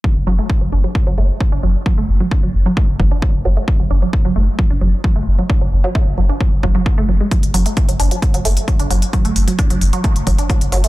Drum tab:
HH |----------------|----------------|----------------|----------------|
BD |o---o---o---o---|o---o---o-o-o---|o---o---o---o---|o---o---o-o-o---|

HH |xxoxxxoxxxoxxxox|xxoxxxoxxxoxxxox|
BD |o---o---o---o---|o---o---o-o-o---|